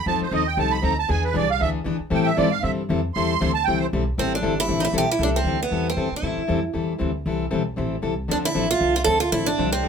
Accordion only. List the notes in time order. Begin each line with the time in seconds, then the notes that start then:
0.07 A5
0.22 C5
0.34 D#5
0.47 G5
0.59 A5
0.72 B5
0.83 A#5
0.99 A5
1.10 G#5
1.25 B4
1.37 D5
1.51 F5
1.62 E5
2.14 G5
2.26 E5
2.37 D5
2.51 F5
2.63 E5
3.14 C6
3.54 A5
3.64 G5
3.79 C5